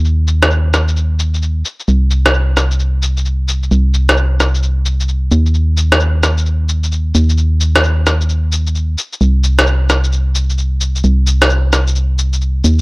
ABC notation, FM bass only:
X:1
M:4/4
L:1/8
Q:"Swing 16ths" 1/4=131
K:Cm
V:1 name="FM bass" clef=bass
E,,6- E,, z | C,,8 | C,,6- C,, E,,- | E,,6- E,, E,,- |
E,,6- E,, z | C,,8 | C,,6- C,, E,, |]